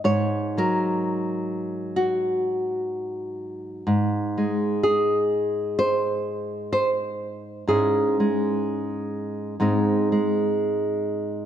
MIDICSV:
0, 0, Header, 1, 2, 480
1, 0, Start_track
1, 0, Tempo, 953895
1, 25, Time_signature, 4, 2, 24, 8
1, 5765, End_track
2, 0, Start_track
2, 0, Title_t, "Nylon-string guitar"
2, 0, Program_c, 0, 24
2, 21, Note_on_c, 0, 44, 62
2, 24, Note_on_c, 0, 73, 91
2, 289, Note_on_c, 0, 54, 51
2, 293, Note_on_c, 0, 70, 89
2, 769, Note_off_c, 0, 73, 0
2, 986, Note_off_c, 0, 70, 0
2, 988, Note_on_c, 0, 66, 74
2, 1940, Note_off_c, 0, 44, 0
2, 1946, Note_on_c, 0, 44, 67
2, 1947, Note_off_c, 0, 54, 0
2, 1948, Note_off_c, 0, 66, 0
2, 2202, Note_on_c, 0, 56, 54
2, 2433, Note_on_c, 0, 68, 84
2, 2910, Note_off_c, 0, 68, 0
2, 2912, Note_on_c, 0, 72, 98
2, 3378, Note_off_c, 0, 72, 0
2, 3384, Note_on_c, 0, 72, 91
2, 3856, Note_off_c, 0, 44, 0
2, 3862, Note_on_c, 0, 44, 67
2, 3865, Note_off_c, 0, 72, 0
2, 3866, Note_off_c, 0, 56, 0
2, 3867, Note_on_c, 0, 68, 76
2, 3868, Note_on_c, 0, 56, 43
2, 3871, Note_on_c, 0, 61, 46
2, 3874, Note_on_c, 0, 64, 45
2, 4120, Note_off_c, 0, 56, 0
2, 4126, Note_on_c, 0, 56, 58
2, 4799, Note_off_c, 0, 56, 0
2, 4804, Note_off_c, 0, 61, 0
2, 4805, Note_off_c, 0, 64, 0
2, 4823, Note_off_c, 0, 44, 0
2, 4829, Note_on_c, 0, 44, 64
2, 4832, Note_on_c, 0, 56, 45
2, 4836, Note_on_c, 0, 60, 45
2, 4839, Note_on_c, 0, 63, 42
2, 5087, Note_off_c, 0, 56, 0
2, 5093, Note_on_c, 0, 56, 56
2, 5762, Note_off_c, 0, 56, 0
2, 5765, Note_off_c, 0, 44, 0
2, 5765, Note_off_c, 0, 60, 0
2, 5765, Note_off_c, 0, 63, 0
2, 5765, Note_off_c, 0, 68, 0
2, 5765, End_track
0, 0, End_of_file